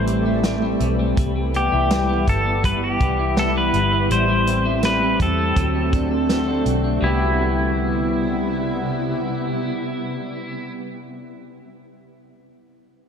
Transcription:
0.00 0.77 A1 medium
0.00 4.05 E3 medium
0.00 0.44 G3 soft
0.00 4.06 G3 medium
0.00 1.14 A3 medium
0.00 0.25 E4 medium
0.07 0.62 C4 soft
0.07 closed hi-hat soft
0.25 1.72 E4 medium
0.44 0.81 G3 medium
0.44 snare medium
0.44 closed hi-hat medium
0.62 0.99 C4 medium
0.80 1.15 B1 medium
0.80 1.17 G3 soft
0.80 closed hi-hat soft
0.99 1.54 C4 medium
1.17 1.69 C2 medium
1.17 1.35 G3 medium
1.17 4.08 B3 medium
1.17 4.07 E4 medium
1.17 kick loud
1.17 closed hi-hat medium
1.36 1.90 G3 medium
1.54 2.08 B3 soft
1.54 2.29 G4 medium
1.54 closed hi-hat soft
1.72 2.25 C2 medium
1.72 3.19 E4 medium
1.90 2.27 G3 medium
1.90 snare loud
1.90 closed hi-hat medium
2.09 2.45 B3 medium
2.28 2.97 G1 medium
2.28 2.64 G3 soft
2.28 2.62 A4 medium
2.28 kick medium
2.28 closed hi-hat soft
2.46 3.00 B3 medium
2.64 2.82 G3 medium
2.64 2.83 B4 medium
2.64 kick medium
2.64 closed hi-hat medium
2.84 3.39 G4 medium
3.01 3.70 C2 medium
3.01 3.55 B3 medium
3.01 kick medium
3.01 closed hi-hat soft
3.19 4.17 E4 soft
3.37 3.73 G3 soft
3.37 3.55 A4 medium
3.37 snare medium
3.37 closed hi-hat medium
3.56 3.91 B3 medium
3.56 4.12 B4 medium
3.73 4.08 G1 medium
3.73 4.09 G3 soft
3.73 closed hi-hat soft
3.93 4.18 B3 medium
4.10 5.15 A1 medium
4.10 4.28 G3 medium
4.10 5.55 A3 medium
4.10 7.00 C4 medium
4.10 5.55 G4 medium
4.10 4.85 C5 medium
4.10 closed hi-hat medium
4.29 4.82 G3 soft
4.47 5.02 C4 medium
4.47 closed hi-hat soft
4.65 5.64 E4 medium
4.83 5.19 G3 medium
4.83 5.22 B4 medium
4.83 snare medium
4.83 closed hi-hat medium
5.02 5.38 C4 soft
5.20 5.54 E2 medium
5.20 6.63 A4 medium
5.20 kick medium
5.20 closed hi-hat soft
5.38 5.75 C4 soft
5.56 6.62 D2 medium
5.56 7.01 D3 medium
5.56 7.00 F#3 medium
5.56 7.01 A3 medium
5.56 7.01 F#4 medium
5.56 kick medium
5.56 closed hi-hat medium
5.75 6.29 C4 soft
5.93 6.46 D4 soft
5.93 kick medium
5.93 closed hi-hat soft
6.11 7.06 A4 medium
6.29 6.65 C4 medium
6.29 snare medium
6.29 closed hi-hat medium
6.47 6.83 D4 medium
6.65 7.00 B1 medium
6.65 7.03 C4 soft
6.65 closed hi-hat soft
6.84 7.04 D4 soft
7.01 10.96 C2 medium
7.01 10.71 C3 medium
7.01 10.99 G3 medium
7.01 10.71 G3 medium
7.01 11.01 B3 medium
7.01 10.71 B3 medium
7.01 10.71 E4 medium
7.01 10.72 E4 medium
7.01 11.03 E4 medium
7.06 11.04 G4 medium

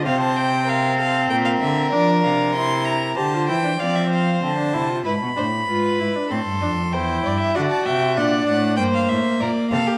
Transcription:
0.05 1.30 C3 medium
0.05 1.94 C4 medium
0.05 0.66 C5 medium
0.05 0.20 F5 medium
0.20 0.38 A5 medium
0.36 0.70 G5 medium
0.67 1.00 A#4 medium
0.67 0.99 F5 medium
0.98 1.31 A4 medium
0.98 1.29 F5 medium
1.30 1.61 A#2 medium
1.30 3.18 A#4 medium
1.30 1.36 G5 medium
1.45 1.52 F5 medium
1.61 1.92 D3 medium
1.61 1.90 E5 medium
1.91 2.26 F3 medium
1.91 2.55 D4 medium
1.91 2.23 D5 medium
2.24 3.17 C3 medium
2.24 2.54 F5 medium
2.54 3.16 E4 medium
2.54 2.87 C6 medium
2.85 3.16 A#5 medium
3.16 3.50 D3 medium
3.16 3.35 G4 medium
3.16 3.79 C5 medium
3.16 3.48 A5 medium
3.33 3.48 F4 medium
3.48 3.79 E3 medium
3.48 3.55 E4 medium
3.48 3.81 G5 medium
3.64 3.70 D4 medium
3.80 4.41 F3 medium
3.80 4.41 C4 medium
3.80 4.10 D5 medium
3.80 3.97 F5 medium
3.96 4.11 E5 medium
4.11 5.03 C5 medium
4.11 4.42 F5 medium
4.42 4.76 D3 medium
4.42 4.57 C4 medium
4.42 5.05 A5 medium
4.58 4.75 D4 medium
4.73 5.06 C3 medium
4.73 4.90 E4 medium
4.89 5.04 F4 medium
5.04 5.20 G#2 medium
5.04 5.12 E4 medium
5.04 5.14 B4 medium
5.04 6.33 B5 medium
5.22 5.28 B2 medium
5.36 5.68 A2 medium
5.36 5.44 D4 medium
5.36 5.45 C5 medium
5.68 5.99 G#2 medium
5.68 6.01 F4 medium
5.68 6.29 B4 medium
5.99 6.08 G#2 medium
5.99 6.17 E4 medium
6.15 6.29 D4 medium
6.30 6.46 A2 medium
6.30 6.38 C4 medium
6.30 6.95 A4 medium
6.30 6.94 C6 medium
6.47 6.63 G2 medium
6.61 6.95 F2 medium
6.61 6.69 D4 medium
6.93 7.24 E2 medium
6.93 7.57 E4 medium
6.93 7.24 C5 medium
6.93 7.54 G5 medium
7.25 7.55 G2 medium
7.25 7.39 D5 medium
7.40 7.56 E5 medium
7.55 7.64 D3 medium
7.55 8.18 F#4 medium
7.55 7.87 D5 medium
7.55 7.61 F#5 medium
7.70 7.85 A5 medium
7.85 8.19 C3 medium
7.85 8.19 E5 medium
7.85 8.16 G5 medium
8.17 8.47 A#2 medium
8.17 8.78 D4 medium
8.17 8.79 D5 medium
8.17 8.46 F#5 medium
8.47 8.80 A2 medium
8.47 8.76 F#5 medium
8.77 9.09 G2 medium
8.77 9.98 A#3 medium
8.77 9.40 C5 medium
8.77 8.83 G5 medium
8.94 9.10 F5 medium
9.09 9.18 A2 medium
9.09 9.42 E5 medium
9.41 9.49 A#2 medium
9.41 9.49 A#4 medium
9.41 9.70 D5 medium
9.71 9.80 C3 medium
9.71 9.89 A4 medium
9.71 9.98 F5 medium
9.87 9.98 G4 medium

